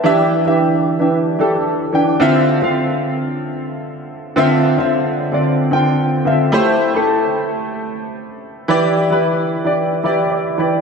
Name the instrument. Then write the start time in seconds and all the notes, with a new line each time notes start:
grand piano
Already playing: B4
0.04 E3 D4 G4 E5
0.45 E3 D4 G4 E5
0.99 E3 D4 G4 E5
1.39 E3 D4 G4 A4
1.93 E3 D4 G4 G5
2.20 D3 C4 F4 E5
2.62 D3 C4 F4 F5
4.36 D3 C4 F4 E5
4.78 D3 C4 F4 E5
5.32 D3 C4 F4 D5
5.71 D3 C4 F4 G5
6.25 D3 C4 F4 E5
6.52 A3 E4 G4 C5
6.94 A3 E4 G4 A4
8.68 E3 E4 G4 D5
9.10 E3 E4 G4 B4
9.64 E3 E4 G4 D5
10.03 E3 E4 G4 D5
10.32 D5
10.58 E3 E4 G4 D5